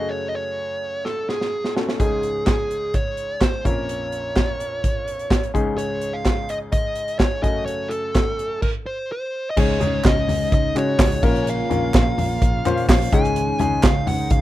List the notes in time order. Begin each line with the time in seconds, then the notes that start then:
Already playing: F#2 C#3 A3 C#4 F#4 G#4 D#5
0.10 C#5
0.28 D#5
0.35 C#5
1.05 A4, snare
1.29 G#4, snare
1.41 snare
1.65 snare
1.76 A3 C#4 F#4 A4, snare
1.89 snare
2.00 C#2 G#2 G#3 C#4 D#4 G#4, kick, closed hi-hat
2.23 closed hi-hat
2.46 G#4, kick, snare, clap, closed hi-hat
2.71 closed hi-hat
2.94 C#5, kick, closed hi-hat
3.17 closed hi-hat
3.41 C5, kick, snare, clap, closed hi-hat
3.65 A#1 F2 A#3 C#4 F4 A#4 C#5, kick, closed hi-hat
3.89 closed hi-hat
4.12 closed hi-hat
4.36 kick, snare, clap, closed hi-hat
4.60 closed hi-hat
4.84 kick, closed hi-hat
5.08 closed hi-hat
5.19 closed hi-hat
5.31 kick, snare, clap, closed hi-hat
5.44 closed hi-hat
5.54 C#2 G#2 G#3 C#4 D#4 G#4, kick, closed hi-hat
5.78 C#5, closed hi-hat
6.01 closed hi-hat
6.13 F5
6.25 kick, snare, clap, closed hi-hat
6.49 D#5, closed hi-hat
6.72 D#5, kick, closed hi-hat
6.95 closed hi-hat
7.08 closed hi-hat
7.19 C#5, kick, snare, clap, closed hi-hat
7.42 F#2 C#3 A3 C#4 F#4 D#5 G#5, kick, closed hi-hat
7.66 C#5, closed hi-hat
7.89 A4, closed hi-hat
8.15 kick, snare, clap, closed hi-hat
8.39 closed hi-hat
8.62 A#4, kick, crash
8.86 C5
9.12 C5
9.50 D#5
9.57 C#2 G#2 C#3 G#3 C#4 D#4 G#4 C#5, kick, crash
9.80 C#2 G#3 C#4 D#4 G#4, floor tom, hi-hat pedal, open hi-hat
10.04 C#2 D#5, kick, snare, clap, hi-hat pedal, open hi-hat
10.28 C#2, floor tom, hi-hat pedal, open hi-hat
10.52 C#2 D#5, kick, hi-hat pedal, open hi-hat
10.75 C#3 G#3 C#4 D#4 F#4 C#5, clap, hi-hat pedal, open hi-hat
10.99 C#2, kick, snare, clap, hi-hat pedal, open hi-hat
11.12 open hi-hat
11.23 A#1 A#3 C#4 F4 A#4 C#5, kick, crash
11.35 hi-hat pedal
11.47 F5, hi-hat pedal, open hi-hat
11.70 A#1 A#3 C#4 F4 A#4, floor tom, hi-hat pedal, open hi-hat
11.94 A#1, kick, snare, clap, hi-hat pedal, open hi-hat
12.18 A#1, floor tom, hi-hat pedal, open hi-hat
12.42 A#1, kick, hi-hat pedal, open hi-hat
12.65 A#2 A#3 C#4 F4 C5, clap, floor tom, hi-hat pedal, open hi-hat
12.77 open hi-hat
12.88 A#1 F5, kick, snare, clap, hi-hat pedal, open hi-hat
13.01 hi-hat pedal, open hi-hat
13.12 C#2 G#2 C#3 D#3 G#3 C#4 D#4 G#4 G#5, kick, hi-hat pedal, open hi-hat
13.24 hi-hat pedal
13.36 hi-hat pedal, open hi-hat
13.59 C#2 G#3 C#4 D#4 G#4 G#5, floor tom, hi-hat pedal, open hi-hat
13.83 C#2 F5, kick, snare, clap, hi-hat pedal, open hi-hat
14.07 C#2 F#5, floor tom, hi-hat pedal, open hi-hat
14.30 C#2 F5, kick, hi-hat pedal, open hi-hat